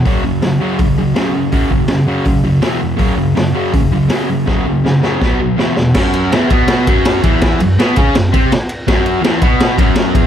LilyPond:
<<
  \new Staff \with { instrumentName = "Distorted electric guitar" } { \clef bass \time 4/4 \key e \lydian \tempo 4 = 163 <fis, cis fis>8 <fis, cis>8 <fis, cis>8 <fis, cis fis>8 <fis, cis>8 <fis, cis>8 <fis, cis fis>8 <fis, cis>8 | <fis, cis fis>8 <fis, cis>8 <fis, cis>8 <fis, cis fis>8 <fis, cis>8 <fis, cis>8 <e, b, e>8 <e, b,>8 | <fis, cis fis>8 <fis, cis>8 <fis, cis>8 <fis, cis fis>8 <fis, cis>8 <fis, cis>8 <fis, cis fis>8 <fis, cis>8 | <fis, cis fis>8 <fis, cis>8 <fis, cis>8 <fis, cis fis>8 <b, fis b>8 <b, fis>8 <e, b, e>8 <e, b,>8 |
<fis, fis>4 <e, e>8 <b, b>4 <fis, fis>4 <e, e>8~ | <e, e>8 fis,8 <b, b>8 <cis cis'>8 fis,8 <bis, bis>8 r4 | <fis, fis>4 <e, e>8 <b, b>4 <fis, fis>4 <e, e>8 | }
  \new DrumStaff \with { instrumentName = "Drums" } \drummode { \time 4/4 <hho bd>4 <hho sn>4 <hho bd>4 <hho sn>4 | <hho bd>8 bd8 <hho sn>4 <hho bd>4 <hho sn>4 | <hho bd>4 <hho sn>4 <hho bd>4 <hho sn>4 | <bd sn>4 sn8 sn8 <bd sn>4 sn8 sn8 |
<cymc bd sn>8 cymr8 <cymr sn>8 <bd cymr>8 <cymr sn>8 <bd cymr>8 <cymr sn>8 <bd cymr>8 | <bd cymr sn>8 cymr8 <cymr sn>8 <bd cymr>8 <cymr sn>8 <bd cymr>8 <cymr sn>8 cymr8 | <bd cymr sn>8 cymr8 <cymr sn>8 <bd cymr>8 <cymr sn>8 <bd cymr>8 <cymr sn>8 <bd cymr>8 | }
>>